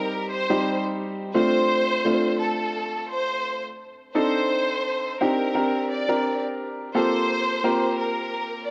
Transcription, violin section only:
0.00 0.29 A#4 medium
0.31 0.82 C5 medium
1.35 2.36 C5 loud
2.40 3.06 A4 medium
3.10 3.61 C5 medium
4.15 5.16 C5 loud
5.22 5.87 A#4 medium
5.90 6.40 D5 medium
6.95 7.96 C5 loud
7.97 8.64 A#4 medium

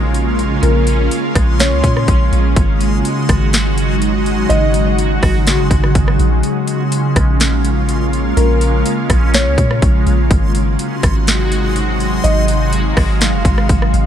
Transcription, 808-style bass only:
0.00 0.59 A#1 loud
0.63 1.09 A#1 loud
1.35 1.73 A#1 loud
1.72 1.83 C#2 loud
1.84 2.07 A#2 loud
2.08 2.31 A#1 loud
2.32 2.56 A#1 loud
2.56 3.03 G#1 loud
3.29 4.46 G#1 loud
4.50 5.20 G#1 loud
5.23 5.60 G#1 loud
5.59 5.70 F#1 loud
5.71 5.94 G#1 loud
5.95 6.18 G#1 loud
6.19 6.43 A#1 loud
7.16 8.33 A#1 loud
8.37 8.84 A#1 loud
9.10 9.48 A#1 loud
9.46 9.57 C#2 loud
9.58 9.81 A#2 loud
9.82 10.06 A#1 loud
10.07 10.30 A#1 loud
10.31 10.77 G#1 loud
11.03 12.20 G#1 loud
12.24 12.94 G#1 loud
12.97 13.35 G#1 loud
13.33 13.44 F#1 loud
13.45 13.68 G#1 loud
13.69 13.93 G#1 loud
13.94 14.06 G#1 loud

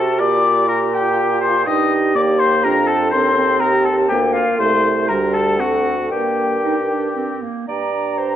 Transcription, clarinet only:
0.00 0.22 F#4 medium
0.21 0.69 G4 medium
0.70 1.65 G4 medium
1.67 2.17 D#4 medium
2.15 2.67 A#3 medium
2.65 3.13 D4 medium
3.14 3.37 C4 medium
3.38 4.09 C4 medium
4.11 4.59 A#3 medium
4.59 5.12 A3 medium
5.10 5.61 G3 medium
5.60 5.96 C4 soft
6.11 6.58 A#3 soft
6.64 6.76 D#4 medium
6.89 7.15 D4 soft
7.16 7.44 C4 soft
7.42 7.67 A#3 soft
7.68 8.20 D5 medium
8.19 8.36 C5 medium

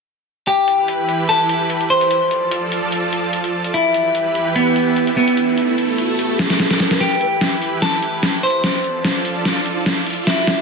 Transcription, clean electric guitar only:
0.47 1.21 G4 medium
1.29 1.83 A4 medium
1.90 3.66 C5 medium
3.74 4.48 E4 medium
4.56 5.09 B3 medium
5.17 6.93 B3 medium
7.00 7.74 G4 medium
7.82 8.36 A4 medium
8.43 10.19 C5 medium
10.27 10.62 E4 loud

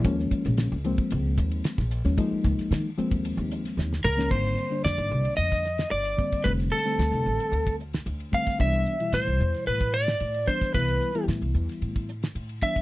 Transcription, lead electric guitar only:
4.05 4.29 A#4 medium
4.31 4.84 C5 medium
4.85 5.36 D5 medium
5.37 5.91 D#5 medium
5.91 6.47 D5 medium
6.44 6.51 B4 medium
6.72 7.75 A4 medium
8.34 8.60 F5 medium
8.61 9.15 E5 medium
9.14 9.67 C5 medium
9.67 9.95 B4 medium
9.94 10.49 D5 medium
10.47 10.74 C5 medium
10.74 11.24 B4 medium
12.63 12.82 E5 medium

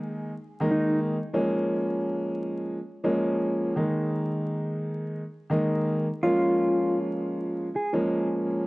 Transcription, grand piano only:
0.00 0.31 D#3 medium
0.00 0.31 G#3 medium
0.00 0.31 A#3 medium
0.00 0.31 D#4 loud
0.60 1.15 D#3 medium
0.60 1.15 G#3 medium
0.60 1.16 A#3 medium
0.60 1.16 D#4 loud
1.33 2.77 F3 medium
1.33 2.77 G#3 medium
1.33 2.77 A#3 medium
1.33 2.77 C#4 loud
3.04 3.73 F3 loud
3.04 3.73 G#3 medium
3.04 3.73 A#3 medium
3.04 3.73 C#4 loud
3.76 5.20 D#3 medium
3.76 5.21 G#3 medium
3.76 5.21 A#3 medium
3.76 5.21 D#4 loud
5.50 6.05 D#3 loud
5.50 6.05 G#3 medium
5.50 6.05 A#3 medium
5.50 6.05 D#4 loud
6.23 7.66 F3 medium
6.23 7.66 G#3 medium
6.23 7.66 A#3 medium
6.23 7.67 C#4 loud
7.93 8.62 F3 medium
7.93 8.62 G#3 medium
7.93 8.62 A#3 medium
7.93 8.63 C#4 loud

